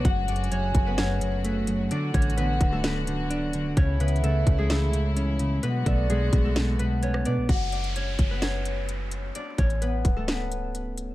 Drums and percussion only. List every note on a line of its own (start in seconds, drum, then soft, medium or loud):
0.05 kick loud
0.05 closed hi-hat medium
0.28 closed hi-hat medium
0.36 closed hi-hat medium
0.44 closed hi-hat soft
0.52 closed hi-hat medium
0.75 kick loud
0.75 closed hi-hat medium
0.98 snare loud
0.98 closed hi-hat medium
1.21 closed hi-hat medium
1.44 closed hi-hat medium
1.67 closed hi-hat medium
1.91 closed hi-hat medium
2.14 kick medium
2.14 closed hi-hat medium
2.22 closed hi-hat medium
2.30 closed hi-hat soft
2.38 closed hi-hat medium
2.61 kick loud
2.61 closed hi-hat medium
2.84 snare loud
2.84 closed hi-hat medium
3.07 closed hi-hat medium
3.31 closed hi-hat medium
3.53 closed hi-hat medium
3.77 kick loud
3.77 closed hi-hat medium
4.00 closed hi-hat medium
4.08 closed hi-hat medium
4.16 closed hi-hat soft
4.24 closed hi-hat medium
4.47 kick loud
4.47 closed hi-hat medium
4.70 snare loud
4.70 closed hi-hat medium
4.93 closed hi-hat medium
5.17 closed hi-hat medium
5.39 closed hi-hat medium
5.63 closed hi-hat medium
5.86 kick medium
5.86 closed hi-hat medium
6.10 closed hi-hat medium
6.33 kick loud
6.33 closed hi-hat medium
6.56 snare loud
6.56 closed hi-hat medium
6.79 closed hi-hat medium
7.03 closed hi-hat medium
7.14 cross-stick medium
7.25 closed hi-hat medium
7.49 kick loud
7.49 closed hi-hat medium
7.72 closed hi-hat medium
7.84 closed hi-hat soft
7.96 closed hi-hat medium
8.19 kick medium
8.19 closed hi-hat medium
8.42 snare loud
8.42 closed hi-hat medium
8.65 closed hi-hat medium
8.89 closed hi-hat medium
9.11 closed hi-hat medium
9.35 closed hi-hat medium
9.58 kick medium
9.58 closed hi-hat medium
9.58 open hi-hat medium
9.70 closed hi-hat soft
9.82 closed hi-hat medium
10.05 kick loud
10.05 closed hi-hat medium
10.28 snare loud
10.28 closed hi-hat medium
10.52 closed hi-hat medium
10.75 closed hi-hat medium
10.98 closed hi-hat medium